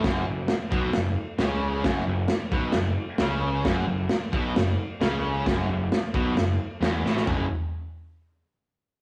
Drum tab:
CC |x---x---x---x---|x---x---x---x---|x---x---x---x---|x---x---x---x---|
SD |o---o---o---o---|o---o---o---o---|o---o---o---o---|o---o---o---o-oo|
FT |----------------|----------------|----------------|----------------|
BD |o-----o---------|o-----o---------|o-----o---------|o-----o---------|

CC |x---------------|
SD |----------------|
FT |o---------------|
BD |o---------------|